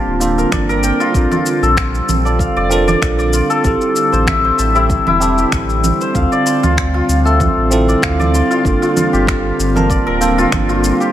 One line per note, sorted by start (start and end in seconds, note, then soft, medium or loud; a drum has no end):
0.00 11.12 D3 medium
0.00 1.15 G3 medium
0.00 0.20 A#3 medium
0.00 1.15 C4 medium
0.00 0.21 D4 medium
0.00 0.21 F4 medium
0.00 1.00 F4 medium
0.00 3.66 F4 medium
0.00 2.90 G4 medium
0.00 0.38 A#4 loud
0.00 0.52 D5 medium
0.00 0.83 G5 medium
0.00 1.17 A5 medium
0.07 0.45 D1 loud
0.20 0.32 A#3 loud
0.20 0.32 D4 medium
0.20 0.33 F4 medium
0.20 0.33 A4 loud
0.20 shaker medium
0.38 0.69 A#4 medium
0.38 shaker soft
0.52 0.92 G1 medium
0.52 2.25 D5 medium
0.52 finger snap loud
0.52 kick loud
0.52 low conga medium
0.52 shaker soft
0.69 1.69 A#4 loud
0.69 shaker soft
0.83 2.90 G5 medium
0.83 shaker medium
1.00 1.31 F4 loud
1.00 shaker soft
1.13 1.26 A#1 loud
1.13 2.21 C4 medium
1.13 2.21 D4 medium
1.13 2.22 F4 medium
1.13 kick loud
1.13 shaker soft
1.17 2.23 A4 medium
1.27 11.12 G3 medium
1.27 11.12 C4 medium
1.31 3.33 F4 medium
1.31 low conga medium
1.31 shaker soft
1.46 shaker medium
1.62 2.01 A#1 loud
1.62 2.76 A4 medium
1.62 shaker soft
1.77 finger snap medium
1.77 kick loud
1.77 shaker soft
1.95 shaker soft
2.09 2.48 A#1 medium
2.09 low conga medium
2.09 shaker medium
2.24 2.67 C4 medium
2.24 2.68 D4 medium
2.24 2.68 F4 medium
2.24 2.68 A4 medium
2.24 2.56 D5 medium
2.24 shaker soft
2.39 4.33 F5 medium
2.39 kick medium
2.39 shaker soft
2.56 2.95 F1 loud
2.56 2.87 D5 loud
2.70 2.82 C4 loud
2.70 2.82 D4 medium
2.70 2.82 F4 medium
2.70 2.83 A4 loud
2.70 3.56 A#4 medium
2.70 shaker medium
2.88 3.18 D5 loud
2.88 low conga medium
2.88 shaker soft
3.02 3.42 A#1 medium
3.02 finger snap medium
3.02 kick loud
3.02 shaker soft
3.19 5.65 D5 medium
3.19 shaker soft
3.33 4.33 F4 medium
3.33 shaker medium
3.50 6.43 A4 medium
3.50 shaker soft
3.63 3.76 A1 loud
3.63 4.71 C4 medium
3.63 4.71 E4 medium
3.63 4.72 G4 medium
3.63 kick loud
3.63 shaker soft
3.67 4.73 A4 medium
3.81 shaker soft
3.96 shaker medium
4.12 4.51 A1 loud
4.12 4.44 C5 medium
4.12 shaker soft
4.17 6.15 E4 medium
4.27 6.22 E5 medium
4.27 finger snap medium
4.27 kick loud
4.27 low conga medium
4.27 shaker soft
4.45 6.01 C5 medium
4.59 4.98 A1 medium
4.59 6.52 A5 medium
4.59 shaker medium
4.75 5.17 C4 medium
4.75 5.07 E4 loud
4.75 5.18 E4 medium
4.75 5.18 G4 medium
4.75 5.18 A4 medium
4.75 shaker soft
4.90 kick loud
4.90 shaker soft
5.06 5.45 E1 loud
5.06 6.22 E4 loud
5.06 low conga medium
5.20 5.32 C4 loud
5.20 5.32 E4 medium
5.20 5.32 G4 medium
5.20 5.33 A4 loud
5.20 shaker medium
5.38 8.53 G4 medium
5.38 shaker soft
5.52 5.92 A1 medium
5.52 finger snap medium
5.52 kick medium
5.52 shaker soft
5.69 shaker soft
5.84 low conga medium
5.84 shaker medium
6.01 8.65 C5 medium
6.01 shaker soft
6.13 6.27 D2 loud
6.13 7.21 C4 medium
6.13 7.22 F4 medium
6.13 8.02 F5 medium
6.13 kick loud
6.13 shaker soft
6.17 7.23 A4 medium
6.32 7.88 D5 medium
6.32 shaker soft
6.46 8.20 C6 medium
6.46 shaker medium
6.59 11.12 F4 medium
6.63 7.02 D2 loud
6.63 6.94 F4 medium
6.63 low conga medium
6.63 shaker soft
6.78 finger snap medium
6.78 kick medium
6.78 shaker soft
6.94 8.50 F4 medium
7.09 7.48 D2 medium
7.09 shaker medium
7.25 7.68 C4 medium
7.25 7.68 F4 medium
7.25 9.82 A4 medium
7.25 7.69 A4 medium
7.25 7.68 E5 medium
7.25 shaker soft
7.40 kick medium
7.40 low conga medium
7.40 shaker soft
7.57 7.95 A1 loud
7.71 7.82 C4 loud
7.71 7.83 E4 medium
7.71 7.83 F4 medium
7.71 7.83 A4 loud
7.71 shaker medium
7.88 8.19 D5 medium
7.88 shaker soft
8.02 8.42 D2 medium
8.02 10.24 F5 medium
8.02 finger snap medium
8.02 kick medium
8.02 shaker soft
8.20 9.89 D5 loud
8.20 low conga medium
8.20 shaker soft
8.34 10.08 C6 medium
8.34 shaker medium
8.51 8.82 F4 loud
8.51 shaker soft
8.63 8.77 G1 loud
8.63 9.71 A#3 medium
8.63 9.72 D4 medium
8.63 9.72 F4 medium
8.63 kick loud
8.63 shaker soft
8.68 9.73 A4 medium
8.82 10.38 F4 medium
8.82 shaker soft
8.97 low conga medium
8.97 shaker medium
9.13 9.52 G1 medium
9.13 11.00 G4 medium
9.13 shaker soft
9.27 finger snap loud
9.27 kick medium
9.27 shaker soft
9.59 9.99 G1 medium
9.59 shaker medium
9.75 10.17 A#3 medium
9.75 10.18 D4 medium
9.75 10.18 F4 medium
9.75 10.06 A#4 medium
9.75 10.18 A5 medium
9.75 low conga medium
9.75 shaker soft
9.90 11.12 D5 medium
9.90 kick medium
9.90 shaker soft
10.07 10.46 D1 loud
10.07 11.12 A#4 loud
10.21 10.32 A#3 loud
10.21 10.33 D4 medium
10.21 10.33 F4 medium
10.21 10.33 A4 loud
10.21 11.12 G5 medium
10.21 shaker medium
10.38 10.69 F4 loud
10.38 shaker soft
10.52 10.92 G1 medium
10.52 finger snap medium
10.52 kick medium
10.52 low conga medium
10.52 shaker soft
10.69 11.12 F4 loud
10.69 shaker soft
10.84 shaker medium
11.00 11.12 G4 medium
11.00 shaker soft